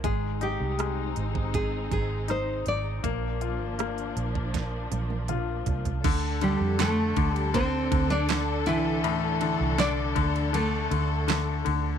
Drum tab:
CC |----------------|----------------|x---------------|----------------|
RD |----------------|----------------|x-x-x-xxx-x-x-x-|x-x-x-xxx-x-x-x-|
HH |x-x-x-x-x-x-x-x-|x-x-xxx-x-x-x-xx|----------------|----------------|
SD |----r-------r---|----r---o-------|----o-------o---|----o-------o---|
T1 |----------------|----------oo----|----------------|----------------|
T2 |----------------|------------o---|----------------|----------------|
FT |----------------|--------------oo|----------------|----------------|
BD |o------oo-o-----|o------oo-------|o-----o-o-o-----|------o---------|